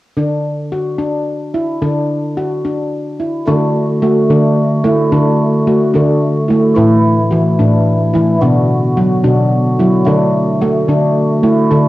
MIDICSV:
0, 0, Header, 1, 3, 480
1, 0, Start_track
1, 0, Key_signature, 2, "major"
1, 0, Tempo, 549954
1, 142, Time_signature, 6, 3, 24, 8
1, 10373, End_track
2, 0, Start_track
2, 0, Title_t, "Handpan"
2, 0, Program_c, 0, 114
2, 146, Note_on_c, 0, 50, 54
2, 151, Note_on_c, 0, 62, 63
2, 628, Note_off_c, 0, 62, 0
2, 629, Note_on_c, 0, 66, 53
2, 859, Note_on_c, 0, 62, 57
2, 867, Note_off_c, 0, 66, 0
2, 1342, Note_off_c, 0, 62, 0
2, 1346, Note_on_c, 0, 64, 55
2, 1558, Note_off_c, 0, 50, 0
2, 1586, Note_off_c, 0, 64, 0
2, 1588, Note_on_c, 0, 62, 67
2, 1589, Note_on_c, 0, 50, 56
2, 2068, Note_off_c, 0, 62, 0
2, 2070, Note_on_c, 0, 66, 57
2, 2309, Note_off_c, 0, 66, 0
2, 2312, Note_on_c, 0, 62, 53
2, 2790, Note_off_c, 0, 62, 0
2, 2791, Note_on_c, 0, 64, 48
2, 3001, Note_off_c, 0, 50, 0
2, 3030, Note_off_c, 0, 64, 0
2, 3033, Note_on_c, 0, 50, 77
2, 3033, Note_on_c, 0, 62, 67
2, 3450, Note_off_c, 0, 50, 0
2, 3510, Note_on_c, 0, 57, 68
2, 3511, Note_off_c, 0, 62, 0
2, 3516, Note_on_c, 0, 66, 54
2, 3719, Note_off_c, 0, 57, 0
2, 3752, Note_off_c, 0, 66, 0
2, 3753, Note_on_c, 0, 50, 68
2, 3757, Note_on_c, 0, 62, 65
2, 4170, Note_off_c, 0, 50, 0
2, 4225, Note_on_c, 0, 57, 77
2, 4233, Note_off_c, 0, 62, 0
2, 4235, Note_on_c, 0, 64, 58
2, 4436, Note_off_c, 0, 57, 0
2, 4469, Note_on_c, 0, 50, 68
2, 4472, Note_off_c, 0, 64, 0
2, 4472, Note_on_c, 0, 62, 75
2, 4888, Note_off_c, 0, 50, 0
2, 4950, Note_off_c, 0, 62, 0
2, 4951, Note_on_c, 0, 57, 61
2, 4952, Note_on_c, 0, 66, 61
2, 5160, Note_off_c, 0, 57, 0
2, 5184, Note_on_c, 0, 62, 67
2, 5190, Note_off_c, 0, 66, 0
2, 5197, Note_on_c, 0, 50, 74
2, 5612, Note_off_c, 0, 50, 0
2, 5657, Note_on_c, 0, 64, 53
2, 5666, Note_off_c, 0, 62, 0
2, 5677, Note_on_c, 0, 57, 73
2, 5883, Note_off_c, 0, 57, 0
2, 5892, Note_off_c, 0, 64, 0
2, 5903, Note_on_c, 0, 64, 68
2, 5913, Note_on_c, 0, 45, 71
2, 6329, Note_off_c, 0, 45, 0
2, 6379, Note_on_c, 0, 66, 56
2, 6385, Note_off_c, 0, 64, 0
2, 6392, Note_on_c, 0, 52, 67
2, 6599, Note_off_c, 0, 52, 0
2, 6623, Note_off_c, 0, 66, 0
2, 6625, Note_on_c, 0, 62, 63
2, 6630, Note_on_c, 0, 45, 66
2, 7048, Note_off_c, 0, 45, 0
2, 7101, Note_on_c, 0, 64, 58
2, 7106, Note_off_c, 0, 62, 0
2, 7113, Note_on_c, 0, 52, 79
2, 7320, Note_off_c, 0, 52, 0
2, 7344, Note_off_c, 0, 64, 0
2, 7347, Note_on_c, 0, 62, 65
2, 7350, Note_on_c, 0, 47, 68
2, 7767, Note_off_c, 0, 47, 0
2, 7827, Note_off_c, 0, 62, 0
2, 7827, Note_on_c, 0, 66, 61
2, 7829, Note_on_c, 0, 54, 67
2, 8037, Note_off_c, 0, 54, 0
2, 8061, Note_on_c, 0, 62, 67
2, 8066, Note_on_c, 0, 47, 74
2, 8067, Note_off_c, 0, 66, 0
2, 8484, Note_off_c, 0, 47, 0
2, 8543, Note_off_c, 0, 62, 0
2, 8546, Note_on_c, 0, 64, 58
2, 8553, Note_on_c, 0, 54, 76
2, 8759, Note_off_c, 0, 54, 0
2, 8783, Note_on_c, 0, 62, 71
2, 8785, Note_off_c, 0, 64, 0
2, 8790, Note_on_c, 0, 50, 74
2, 9206, Note_off_c, 0, 50, 0
2, 9263, Note_off_c, 0, 62, 0
2, 9264, Note_on_c, 0, 66, 57
2, 9268, Note_on_c, 0, 57, 73
2, 9475, Note_off_c, 0, 57, 0
2, 9499, Note_on_c, 0, 50, 62
2, 9504, Note_off_c, 0, 66, 0
2, 9504, Note_on_c, 0, 62, 69
2, 9919, Note_off_c, 0, 50, 0
2, 9979, Note_on_c, 0, 57, 77
2, 9980, Note_on_c, 0, 64, 66
2, 9983, Note_off_c, 0, 62, 0
2, 10190, Note_off_c, 0, 57, 0
2, 10221, Note_off_c, 0, 64, 0
2, 10221, Note_on_c, 0, 62, 69
2, 10226, Note_on_c, 0, 50, 78
2, 10373, Note_off_c, 0, 50, 0
2, 10373, Note_off_c, 0, 62, 0
2, 10373, End_track
3, 0, Start_track
3, 0, Title_t, "Pipe organ"
3, 0, Program_c, 1, 19
3, 3023, Note_on_c, 1, 50, 56
3, 3031, Note_on_c, 1, 57, 53
3, 3037, Note_on_c, 1, 66, 62
3, 5877, Note_off_c, 1, 50, 0
3, 5884, Note_off_c, 1, 66, 0
3, 5904, Note_on_c, 1, 52, 63
3, 5905, Note_on_c, 1, 64, 71
3, 7314, Note_off_c, 1, 57, 0
3, 7330, Note_off_c, 1, 52, 0
3, 7331, Note_off_c, 1, 64, 0
3, 7345, Note_on_c, 1, 59, 58
3, 7345, Note_on_c, 1, 66, 69
3, 7351, Note_on_c, 1, 50, 64
3, 8770, Note_off_c, 1, 59, 0
3, 8774, Note_on_c, 1, 57, 58
3, 10373, Note_off_c, 1, 50, 0
3, 10373, Note_off_c, 1, 57, 0
3, 10373, Note_off_c, 1, 66, 0
3, 10373, End_track
0, 0, End_of_file